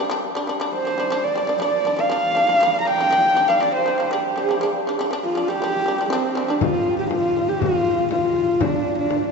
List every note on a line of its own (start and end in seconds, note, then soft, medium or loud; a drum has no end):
0.00 0.29 G4 medium
0.10 0.30 G3 loud
0.10 0.31 D4 loud
0.35 0.46 G3 medium
0.35 0.46 D4 medium
0.47 0.58 G3 medium
0.47 0.59 D4 medium
0.60 0.80 G3 medium
0.60 0.81 D4 medium
0.74 1.25 C5 medium
0.85 0.96 G3 medium
0.85 0.97 D4 medium
0.98 1.08 G3 medium
0.98 1.09 D4 medium
1.10 1.31 G3 medium
1.10 1.32 D4 medium
1.23 1.61 D5 medium
1.35 1.46 G3 medium
1.35 1.47 D4 medium
1.47 1.58 G3 medium
1.47 1.59 D4 medium
1.60 1.81 G3 medium
1.60 1.82 D4 medium
1.60 2.01 D5 medium
1.85 1.95 G3 medium
1.85 1.97 D4 medium
1.96 2.08 G3 medium
1.96 2.09 D4 medium
1.96 2.80 F5 loud
2.10 2.31 G3 medium
2.10 2.32 D4 medium
2.35 2.46 G3 medium
2.35 2.47 D4 medium
2.47 2.58 G3 medium
2.47 2.59 D4 medium
2.60 2.81 G3 loud
2.60 2.82 D4 loud
2.80 2.88 A#5 medium
2.85 2.96 G3 medium
2.85 2.97 D4 medium
2.85 3.49 G5 loud
2.98 3.09 G3 medium
2.98 3.10 D4 medium
3.11 3.31 G3 medium
3.11 3.32 D4 loud
3.35 3.46 G3 medium
3.35 3.47 D4 medium
3.48 3.59 G3 medium
3.48 3.59 D4 medium
3.48 3.62 F5 medium
3.60 3.81 G3 medium
3.60 3.82 D4 medium
3.60 3.74 D5 medium
3.75 4.15 C5 medium
3.86 3.96 G3 medium
3.86 3.97 D4 medium
3.98 4.09 G3 medium
3.98 4.10 D4 medium
4.11 4.31 G3 medium
4.11 4.32 D4 medium
4.11 5.01 G4 medium
4.36 4.46 G3 medium
4.36 4.47 D4 medium
4.49 4.59 G3 medium
4.49 4.60 D4 medium
4.61 4.81 G3 medium
4.61 4.82 D4 medium
4.87 4.97 G3 medium
4.87 4.98 D4 medium
4.99 5.09 G3 medium
4.99 5.10 D4 medium
5.11 5.31 G3 medium
5.11 5.32 D4 loud
5.24 5.50 F4 medium
5.35 5.46 G3 medium
5.35 5.47 D4 medium
5.48 5.59 G3 medium
5.48 5.60 D4 medium
5.48 6.11 G4 loud
5.62 5.82 G3 medium
5.62 5.83 D4 medium
5.86 5.96 G3 medium
5.86 5.97 D4 medium
5.98 6.09 G3 medium
5.98 6.10 D4 medium
6.10 6.31 G3 loud
6.10 6.51 C4 medium
6.10 6.32 D4 loud
6.35 6.46 G3 medium
6.35 6.47 D4 medium
6.48 6.59 G3 medium
6.48 6.63 D4 medium
6.48 6.60 D4 medium
6.61 6.98 F4 medium
6.61 frame drum medium
6.87 frame drum soft
6.99 7.10 G4 medium
7.11 7.50 F4 medium
7.11 frame drum medium
7.48 7.61 G4 medium
7.60 8.11 F4 loud
7.60 frame drum medium
7.86 frame drum soft
8.11 8.63 F4 medium
8.11 frame drum medium
8.37 frame drum soft
8.61 8.98 D4 medium
8.61 frame drum medium
8.86 frame drum soft
8.98 9.32 D4 medium
9.11 frame drum medium